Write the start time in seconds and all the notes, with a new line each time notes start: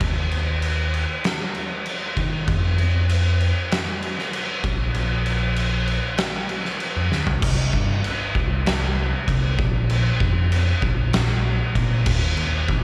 0.00 D#2, kick, crash
0.31 crash
0.62 crash
0.94 crash
1.24 snare, crash
1.55 crash
1.86 crash
2.17 D#3, kick, crash
2.48 F2, kick, crash
2.78 crash
3.09 crash
3.40 crash
3.72 snare, crash
4.03 crash
4.19 snare
4.33 crash
4.64 A#1, kick, crash
4.94 A#1, crash
5.26 crash
5.56 crash
5.87 crash
6.18 snare, crash
6.49 crash
6.65 snare
6.80 crash
6.97 F2
7.11 D2, snare
7.27 C2, floor tom
7.42 C2, kick, crash
7.73 G2, kick
8.04 crash
8.35 C2, kick
8.66 snare, crash
9.28 C2, kick, crash
9.58 A#1, kick
9.90 crash
10.20 F2, kick
10.52 crash
10.82 A#1, kick
11.13 snare, crash
11.75 A#2, kick, crash
12.06 D#2, kick, crash
12.37 D#2, crash
12.68 A#1, kick